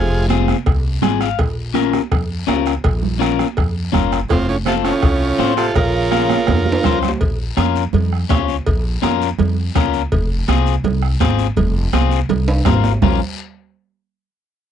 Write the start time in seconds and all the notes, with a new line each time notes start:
Already playing: F1 C3 F4 G#4
0.29 C4 F4 G#4, bombo rim, high conga, short guiro
0.48 bombo rim, high conga, short guiro
0.66 C2, bombo low, bombo rim, cowbell, long guiro
1.02 G#1 C4 F4 G#4 G#5, bombo rim, high conga, low conga, short guiro
1.21 F5, bombo rim, short guiro
1.39 A#1, bombo low, bombo rim, cowbell, long guiro
1.74 C#4 F4 A#4, bombo rim, high conga, short guiro
1.93 bombo rim, high conga, short guiro
2.12 F2, bombo low, bombo rim, cowbell, long guiro
2.47 C#2 C#4 F4 A#4, bombo rim, high conga, low timbale, short guiro
2.66 bombo rim, short guiro
2.84 A#1, bombo low, bombo rim, cowbell, long guiro
3.03 low conga
3.19 C#4 F4 A#4, bombo rim, high conga, short guiro
3.39 bombo rim, high conga, short guiro
3.57 F2, bombo low, bombo rim, cowbell, long guiro
3.92 F#1 C#4 F4 A#4, bombo low, bombo rim, high conga, low conga, short guiro
4.12 bombo rim, short guiro
4.29 F1 A2 C4 F4, bombo low, bombo rim, cowbell, long guiro
4.48 A2 C#4 F4
4.65 C3 C4 F4 A4, bombo rim, high conga, short guiro
4.84 A2 C#4 F4, bombo rim, short guiro
5.02 C2, bombo low, bombo rim, cowbell, long guiro
5.39 A1 C4 F4 C5, bombo rim, high conga, short guiro
5.57 C3 F4 A4, bombo rim, short guiro
5.74 A#1 C#3 F4 A#4, bombo low, bombo rim, cowbell, long guiro
6.11 C#4 F4 A#4, bombo rim, high conga, short guiro
6.30 bombo rim, high conga, short guiro
6.47 F2, bombo low, bombo rim, cowbell, high conga, high timbale, long guiro
6.66 high conga
6.72 high timbale
6.84 C#2 C#4 F4 C5, bombo low, bombo rim, low conga, short guiro
7.02 bombo rim, low conga, short guiro
7.09 low timbale
7.21 A#1, bombo low, cowbell, long guiro
7.57 F2 C#4 F4 A#4, bombo rim, cowbell, high conga, short guiro
7.76 short guiro
7.93 F2, cowbell, low conga, long guiro
8.13 bombo rim
8.29 C#2 C#4 F4 C#5, bombo low, bombo rim, cowbell, high conga, low timbale, short guiro
8.48 short guiro
8.66 A#1, bombo low, cowbell, long guiro
9.02 F2 C#4 F4 A#4, bombo rim, cowbell, high conga, short guiro
9.22 short guiro
9.39 F2, cowbell, low conga, long guiro
9.75 C#2 C#4 F4 A#4, bombo low, bombo rim, cowbell, high conga, short guiro
9.93 short guiro
10.12 F1, bombo low, cowbell, long guiro
10.48 C2 C4 F4 G#4, bombo rim, cowbell, high conga, short guiro
10.66 short guiro
10.84 C2, cowbell, low conga, long guiro
11.02 bombo rim
11.20 G#1 C4 F4 G#4, bombo low, bombo rim, cowbell, high conga, short guiro
11.39 short guiro
11.57 F1, bombo low, cowbell, low conga, long guiro
11.93 C2 C4 F4 G#4, bombo rim, cowbell, high conga, short guiro
12.11 short guiro
12.29 C2, cowbell, low conga, long guiro
12.48 high timbale
12.65 G#1 C4 F4 A#4, bombo low, bombo rim, cowbell, high conga, low conga, low timbale, short guiro
12.84 low timbale, short guiro
13.02 A#1 C#4 F4 A#4, bombo low, low conga, low timbale, long guiro